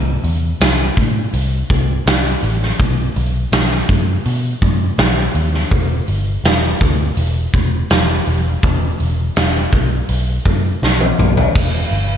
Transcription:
0.00 0.16 C2 medium
0.24 0.52 E2 medium
0.24 open hi-hat soft
0.61 0.89 C2 medium
0.61 snare loud
0.61 open hi-hat medium
0.97 1.25 A2 medium
0.97 kick medium
0.97 open hi-hat soft
1.33 1.62 C2 medium
1.33 open hi-hat medium
1.70 1.98 C2 medium
1.70 kick medium
1.70 open hi-hat soft
2.06 2.34 C2 medium
2.06 snare loud
2.06 open hi-hat medium
2.43 2.71 A1 medium
2.43 open hi-hat soft
2.63 snare soft
2.80 3.08 B1 medium
2.80 kick loud
2.80 open hi-hat medium
3.16 3.44 B1 medium
3.16 open hi-hat medium
3.52 3.80 B1 medium
3.52 snare loud
3.52 open hi-hat medium
3.71 snare soft
3.89 4.17 F#2 medium
3.89 kick medium
3.89 open hi-hat medium
4.25 4.54 B2 medium
4.25 open hi-hat medium
4.62 4.90 F#2 medium
4.62 kick medium
4.62 open hi-hat medium
4.98 5.26 B1 medium
4.98 snare loud
4.98 open hi-hat medium
5.35 5.63 D#2 medium
5.35 open hi-hat soft
5.54 snare soft
5.71 6.00 E1 medium
5.71 kick loud
5.71 open hi-hat medium
6.08 6.36 G1 medium
6.08 open hi-hat medium
6.44 6.72 E1 medium
6.44 snare loud
6.44 open hi-hat medium
6.81 7.09 D2 medium
6.81 kick medium
6.81 open hi-hat soft
7.17 7.45 E1 medium
7.17 open hi-hat medium
7.53 7.82 E1 medium
7.53 kick medium
7.53 open hi-hat soft
7.90 8.19 E1 medium
7.90 snare loud
7.90 open hi-hat medium
8.27 8.55 E1 medium
8.27 open hi-hat soft
8.63 8.92 E1 medium
8.63 kick loud
8.63 open hi-hat medium
9.00 9.28 E1 medium
9.00 open hi-hat medium
9.36 9.65 E1 medium
9.36 snare loud
9.36 open hi-hat medium
9.72 10.01 B1 medium
9.72 kick medium
9.72 open hi-hat medium
10.09 10.38 B1 medium
10.09 open hi-hat medium
10.45 10.74 F#2 medium
10.45 kick medium
10.45 open hi-hat medium
10.82 11.11 B1 medium
10.82 snare medium
11.01 high tom medium
11.19 11.47 B1 medium
11.19 mid tom medium
11.37 floor tom medium
11.55 11.84 E1 medium
11.55 kick loud
11.55 crash loud
11.91 12.17 G1 medium

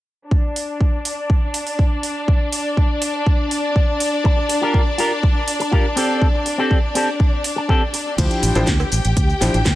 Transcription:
0.31 8.19 D4 medium
0.31 8.19 D5 medium
0.31 kick loud
0.56 open hi-hat medium
0.81 kick medium
1.05 open hi-hat loud
1.30 kick loud
1.54 open hi-hat medium
1.67 open hi-hat medium
1.79 kick medium
2.03 open hi-hat medium
2.28 kick loud
2.52 open hi-hat loud
2.77 kick loud
3.02 open hi-hat loud
3.27 kick loud
3.51 open hi-hat loud
3.76 kick loud
4.00 open hi-hat loud
4.24 muted clean electric guitar stroke loud
4.24 kick loud
4.37 muted clean electric guitar stroke soft
4.49 muted clean electric guitar stroke soft
4.49 open hi-hat loud
4.61 4.80 F4 medium
4.61 4.80 G4 medium
4.61 4.81 A#4 medium
4.74 kick loud
4.98 5.11 F4 medium
4.98 5.11 G4 medium
4.98 5.12 A#4 medium
4.98 open hi-hat loud
5.23 muted clean electric guitar stroke soft
5.23 kick loud
5.48 open hi-hat loud
5.60 muted clean electric guitar stroke loud
5.60 open hi-hat medium
5.71 5.85 F4 medium
5.71 5.85 G4 medium
5.71 5.85 A#4 medium
5.71 kick loud
5.96 6.26 C4 medium
5.96 6.27 G4 medium
5.96 6.27 A4 medium
5.96 open hi-hat loud
6.22 kick loud
6.33 muted clean electric guitar stroke soft
6.45 muted clean electric guitar stroke soft
6.45 open hi-hat loud
6.58 6.77 C4 medium
6.58 6.77 G4 medium
6.58 6.78 A4 medium
6.71 kick loud
6.95 7.08 C4 medium
6.95 7.08 G4 medium
6.95 7.09 A4 medium
6.95 open hi-hat loud
7.19 muted clean electric guitar stroke soft
7.19 kick loud
7.44 open hi-hat loud
7.56 muted clean electric guitar stroke loud
7.68 7.81 C4 medium
7.68 7.82 G4 medium
7.68 7.82 A4 medium
7.68 kick loud
7.93 muted clean electric guitar stroke soft
7.93 open hi-hat loud
8.18 8.26 D2 medium
8.18 8.52 F3 medium
8.18 8.53 D4 medium
8.18 8.53 E4 medium
8.18 9.75 G4 medium
8.18 8.53 C5 medium
8.18 9.75 G5 medium
8.18 kick loud
8.18 closed hi-hat medium
8.18 crash medium
8.18 shaker soft
8.31 closed hi-hat soft
8.31 shaker soft
8.43 8.50 A1 medium
8.43 open hi-hat loud
8.43 shaker medium
8.55 8.63 A1 medium
8.55 8.64 F3 medium
8.55 8.64 D4 medium
8.55 8.64 E4 medium
8.55 8.64 C5 loud
8.55 closed hi-hat medium
8.55 cowbell medium
8.55 shaker soft
8.67 8.83 D2 medium
8.67 kick loud
8.67 snare loud
8.67 closed hi-hat medium
8.67 shaker soft
8.80 cowbell medium
8.80 shaker soft
8.92 9.00 A1 medium
8.92 open hi-hat loud
8.92 shaker medium
9.05 9.12 A1 medium
9.05 closed hi-hat soft
9.05 shaker soft
9.17 9.32 D2 medium
9.17 kick loud
9.17 closed hi-hat medium
9.17 shaker soft
9.30 shaker soft
9.41 9.49 A1 medium
9.41 9.55 F3 medium
9.41 9.56 D4 medium
9.41 9.56 E4 medium
9.41 9.56 C5 medium
9.41 snare medium
9.41 open hi-hat loud
9.41 shaker medium
9.54 9.61 A1 loud
9.54 closed hi-hat medium
9.54 shaker soft
9.65 9.75 D2 loud
9.65 kick loud
9.65 snare loud
9.65 closed hi-hat medium
9.65 shaker soft

